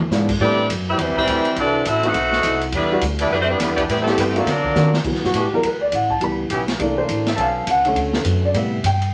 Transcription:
0.10 G#2 F3 G#3 B3 D4 E4, snare, hi-hat pedal
0.29 kick, crash
0.40 A2 E3 G3 A3 B3 C4 D4 E4 G4 B4 D5
0.69 F#2, kick, hi-hat pedal, ride
0.89 G3 C4 E4 G4 B4 E5
0.98 E2 E3 G3 B3 E4 C5, kick, ride
1.02 G3 C4
1.07 C2
1.16 A1 G3 E4 B4 C5, kick
1.21 E3 G3 C4
1.27 D2, kick, hi-hat pedal, ride
1.45 muted upright bass stroke, ride
1.56 C2 A3 C4 D4 F#4 A4 D5, kick, ride
1.60 E3
1.85 A1 A3 C4 E4 F#4 A4 E5, kick, hi-hat pedal, ride
2.03 A3 B3 C4 D#4 F#4 A4 C5, ride
2.07 D#4 F#5
2.14 B1, kick, ride
2.32 snare
2.43 C2, kick, hi-hat pedal, ride
2.61 ride
2.72 E2 D3 G3 B3 D4 E4 B4, kick, ride
2.91 G3 B3 D4 E4 F#4
3.01 D2, kick, hi-hat pedal, ride
3.19 G3 B3 D4 E4 G4 D5, ride
3.30 F#2 D3 G3 B3 D4 E4 B4, kick
3.41 A3 C4 D4 F#4 C5
3.49 D3 G3 B3 D4 E4 B4
3.59 E2 D3 G3 B3 D4 E4 B4, kick, snare, hi-hat pedal, ride
3.76 B3 D4 E4 G4 D5, kick, ride
3.80 G3
3.88 A2 E3 G3 B3 C4 E4 B4, kick, ride
4.00 C3 E3 G3 A3 C4 E4 A4
4.06 A3 B3 C4 E4 G4, snare
4.10 C3 E3 G3 A3 C4 E4 A4
4.17 G2 E3 G3 B3 C4 E4 B4, kick, hi-hat pedal, ride
4.29 C3 E3 G3 B3 C4 G4
4.36 C3 E3 G3 A3 A#3 C4 D4 E4 F4 F#4 A4, ride
4.46 D3 F#3 A#3 C4 F#4 D5, kick, snare, ride
4.50 D4 A#4
4.64 kick
4.75 D#3 A#3 C4 D4 F4 F#4, snare, hi-hat pedal
4.93 snare
5.04 D3 E3 F#3 B3, kick, crash
5.15 B2, snare
5.24 A2 F#4, snare
5.33 A2 E3 B3 D4 F#4, kick, hi-hat pedal, ride
5.38 G4
5.52 E3 F#3 B3 A#4, muted upright bass stroke
5.63 D2 B4, kick, ride
5.81 D5
5.91 A1 F#5, kick, hi-hat pedal, ride
6.10 A5, kick
6.20 C#2 E3 G3 B3 B5, kick, ride
6.50 B1 E3 B3 C#4 G4, kick, hi-hat pedal, ride
6.68 snare, ride
6.79 C2 E3 A3 A#3 D4, kick, ride
6.98 C5
7.08 A1, kick, hi-hat pedal, ride
7.27 E5, snare, ride
7.36 B1 D3 B3 C#4 A4, kick, ride
7.41 F5
7.67 C#2 F#5, kick, hi-hat pedal, ride
7.85 D3 A3 C#4, ride
7.95 D2, kick, ride
8.13 B4, snare
8.24 F#2, kick, hi-hat pedal, ride
8.45 D5
8.54 A2 C3 G3 B3 E5, kick, ride
8.83 G2 G5, kick, hi-hat pedal, ride
9.02 ride

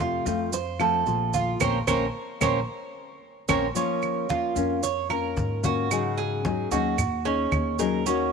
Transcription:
Already playing: F2 C3 F3 A3 C4 F4
0.00 F4, high conga
0.26 F2 F3 A3 C4 F4, high conga, maracas
0.53 C5, muted nylon-string guitar stroke, high conga, maracas
0.79 F3 A3 C4 F4 A4, high conga, claves, maracas
1.06 A#1 F3 A3 C4 F4, high conga, maracas
1.33 F4, high conga, maracas
1.60 A#1 A#3 C4 C#4 A#4 C5 C#5, high conga, claves, maracas
1.87 A#1 A#3 C4 C#4 A#4 C5 C#5, high conga, claves, maracas
2.41 A#1 A#3 C4 C#4 A#4 C5 C#5, high conga, claves, maracas
3.48 A#1 A#3 C4 C#4 A#4 C5 C#5, high conga, claves, maracas
3.75 F3 A#3 C#4 F4, high conga, maracas
4.02 high conga, claves, maracas
4.29 F3 A#3 C#4 F4, high conga, maracas
4.56 F2 A#3 C#4 F4, high conga, maracas
4.83 C#5, muted nylon-string guitar stroke, high conga, maracas
5.09 A#3 C#4 F4 A#4, high conga, claves, maracas
5.37 G#2, high conga, maracas
5.63 A#3 C#4 F4 F#4, high conga, maracas
5.90 C#3 F#3 C#4 D#4 G#4, high conga, claves, maracas
6.18 G#4, high conga, maracas
6.44 F#3 C#4 D#4 G#4, high conga, maracas
6.71 D#2 F#3 C#4 D#4 F#4 G#4, high conga, maracas
6.98 muted nylon-string guitar stroke, high conga, low conga, claves, maracas
7.25 C#4 D#4 G#4, high conga, maracas
7.51 D#2, high conga, claves, maracas
7.79 F#3 C#4 D#4 G#4 A#4, high conga, maracas
8.06 D#3 A#3 C#4 F#4, high conga, maracas

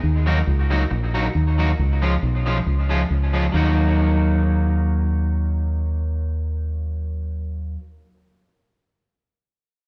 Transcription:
0.03 D#2
0.26 F#3 A#3 D#4 F#4
0.47 C#2
0.70 F#3 A#3 D#4 F#4
0.90 A#1, muted clean electric guitar stroke
1.14 F#3 A#3 D#4 F#4
1.35 D#2
1.58 F#3 A#3 D#4 F#4
1.79 C#2
2.02 F3 G#3 C#4 F4
2.22 B1
2.46 F3 G#3 C#4 F4
2.66 C#2
2.89 F3 G#3 C#4 F4
3.10 C#2
3.33 F3 G#3 C#4 F4
3.52 D#2 F#3 A#3 D#4
3.57 F#4

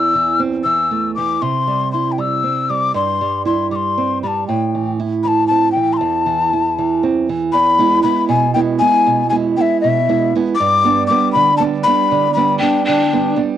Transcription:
Already playing: E2 E6
0.15 E3
0.40 C4
0.64 E3 E6
0.91 A3
1.15 E3 D6
1.42 C3 C6
1.67 G3
1.92 E4 C6
2.12 G5
2.18 G3 E6
2.44 C4
2.70 G3 D6
2.94 G2 C6
3.21 G3
3.45 E4 C6
3.71 G3 D6
3.76 C6
3.98 C4
4.23 G3 B5
4.27 A5
4.47 A2 G5
4.75 E3
5.00 E4
5.23 E3 B5
5.28 A5
5.48 C4 A5
5.72 G5
5.76 E3
5.93 C6
5.97 E2 A5
6.26 E3
6.53 E4
6.78 E3
7.03 C4
7.29 E3
7.52 E2 B5
7.79 G#3 B3 E4
8.03 G#3 B3 E4 B5
8.29 B2 G#5
8.54 G#3 B3 E4 G5
8.79 G#3 B3 E4 G#5
9.06 B2
9.29 G#3 B3 E4 G#5
9.57 G#3 B3 E4 G5
9.61 E5
9.81 B2 E5
10.09 G#3 B3 E4
10.35 G#3 B3 E4
10.55 D6
10.60 G2
10.84 G3 B3 D4
11.07 G3 B3 D4 D6
11.32 D3 B5
11.57 G3 B3 D4 A5
11.84 G3 B3 D4 B5
12.11 D3
12.34 G3 B3 D4 B5
12.59 G3 B3 D4 G5
12.84 D3 D4 G5
13.13 G3 B3 D4
13.36 G3 B3 D4

